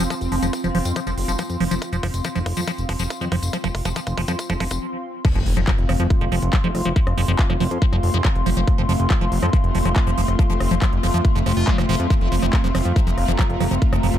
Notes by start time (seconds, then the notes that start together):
Already playing: C4 F4 F5 C6
0.10 F3, kick, closed hi-hat, tambourine
0.21 F1, closed hi-hat, tambourine
0.32 F1 F3, open hi-hat
0.42 F1 F3, closed hi-hat, tambourine
0.53 kick, closed hi-hat, tambourine
0.64 F1 F3, closed hi-hat, tambourine
0.75 F1 F3, open hi-hat
0.85 F2, closed hi-hat, tambourine
0.96 F3, kick, closed hi-hat, tambourine
1.07 F1 F3, closed hi-hat, tambourine
1.18 F1, open hi-hat
1.28 F1 F3, closed hi-hat, tambourine
1.38 F3, kick, closed hi-hat, tambourine
1.49 F2, closed hi-hat, tambourine
1.60 F1 F3, open hi-hat
1.71 F1 F3, closed hi-hat, tambourine
1.82 kick, closed hi-hat, tambourine
1.93 F1 F3, closed hi-hat, tambourine
2.03 F1 F3, kick, open hi-hat
2.14 F1, closed hi-hat, tambourine
2.24 F3, kick, closed hi-hat, tambourine
2.35 F1 F3, closed hi-hat, tambourine
2.46 F1, kick, open hi-hat
2.57 F2 F3, closed hi-hat, tambourine
2.67 F3, kick, closed hi-hat, tambourine
2.78 F1, closed hi-hat, tambourine
2.89 F1 F3, kick, open hi-hat
2.99 F1 F3, closed hi-hat, tambourine
3.10 kick, closed hi-hat, tambourine
3.21 F2 F3, closed hi-hat, tambourine
3.32 F1 F3, kick, open hi-hat
3.43 F1, closed hi-hat, tambourine
3.53 F3, kick, closed hi-hat, tambourine
3.64 F1 F3, kick, closed hi-hat, tambourine
3.75 F1, kick, open hi-hat
3.85 F1 F3, kick, closed hi-hat, tambourine
3.96 F3, kick, closed hi-hat, tambourine
4.07 F1, kick, closed hi-hat, tambourine
4.18 F1 F3, kick, open hi-hat
4.28 F2 F3, kick, closed hi-hat, tambourine
4.39 kick, closed hi-hat, tambourine
4.50 F1 F3, kick, closed hi-hat, tambourine
4.60 F1 F3, kick, open hi-hat
4.71 F1, kick, closed hi-hat, tambourine
5.25 F3 A3 C4, kick, closed hi-hat, crash, impact
5.35 F1 F3, closed hi-hat
5.46 F1 F4, open hi-hat
5.57 F1 F3, cross-stick, closed hi-hat
5.64 F3 F5, kick, clap, closed hi-hat
5.78 F1, closed hi-hat
5.89 F1 F3, cross-stick, open hi-hat
5.97 F2 F3 C6, closed hi-hat
6.10 kick, closed hi-hat
6.21 F1 F3, closed hi-hat
6.32 F1 F3, cross-stick, open hi-hat
6.43 F1, closed hi-hat
6.53 F3, kick, clap, closed hi-hat
6.64 F1 F3, closed hi-hat
6.75 F1, cross-stick, open hi-hat
6.85 F1 F3, closed hi-hat
6.96 F3, kick, closed hi-hat
7.07 F1, cross-stick, closed hi-hat
7.17 F1 F3, open hi-hat
7.28 F1 F3, closed hi-hat
7.39 kick, clap, closed hi-hat
7.50 F1 F3, cross-stick, closed hi-hat
7.60 F1 F3, open hi-hat
7.71 F2, closed hi-hat
7.82 F3, kick, closed hi-hat
7.93 F1 F3, cross-stick, closed hi-hat
8.03 F1, open hi-hat
8.14 F1 F3, closed hi-hat
8.25 F3, kick, cross-stick, clap, closed hi-hat
8.35 F1, closed hi-hat
8.46 F1 F3, open hi-hat
8.57 F1 F3, closed hi-hat
8.68 kick, cross-stick, closed hi-hat
8.78 F1 F3, closed hi-hat
8.89 F1 F3, open hi-hat
9.00 F1, closed hi-hat
9.10 F3, kick, cross-stick, clap, closed hi-hat
9.21 F1 F3, closed hi-hat
9.32 F1, open hi-hat
9.43 F2 F3, cross-stick, closed hi-hat
9.53 F3, kick, closed hi-hat
9.64 F1, closed hi-hat
9.75 F1 F3, open hi-hat
9.85 F1 F3, cross-stick, closed hi-hat
9.96 kick, clap, closed hi-hat
10.07 F1 F3, closed hi-hat
10.18 F1 F3, open hi-hat
10.28 F1, cross-stick, closed hi-hat
10.39 F3, kick, closed hi-hat
10.50 F1 F3, closed hi-hat
10.60 F1, cross-stick, open hi-hat
10.71 F1 F3, closed hi-hat
10.82 F3, kick, clap, closed hi-hat
10.93 F1, closed hi-hat
11.03 F1 F3, cross-stick, open hi-hat
11.14 F2 F3, closed hi-hat
11.25 kick, closed hi-hat
11.35 F1 F3, closed hi-hat
11.46 F1 F3, cross-stick, open hi-hat
11.57 F1 F4, closed hi-hat
11.68 F3, kick, clap, closed hi-hat
11.78 F1 F3, cross-stick, closed hi-hat
11.89 F1 F3, open hi-hat
12.00 F2, closed hi-hat
12.10 F3, kick, closed hi-hat
12.21 F1, closed hi-hat
12.32 F1 F3, open hi-hat
12.43 F1 F3, cross-stick, closed hi-hat
12.53 kick, clap, closed hi-hat
12.64 F1 F3, closed hi-hat
12.75 F1 F3, cross-stick, open hi-hat
12.83 F2 A#5, closed hi-hat
12.96 F3, kick, closed hi-hat
13.07 F1 F3, closed hi-hat
13.18 F1, cross-stick, open hi-hat
13.28 F1 F3, closed hi-hat
13.39 F3, kick, clap, closed hi-hat
13.50 F1, closed hi-hat
13.60 F1 F3, cross-stick, open hi-hat
13.71 F1 F3, closed hi-hat
13.82 kick, closed hi-hat
13.93 F1 F3, cross-stick, closed hi-hat
14.03 F1 F3, open hi-hat
14.14 F1, closed hi-hat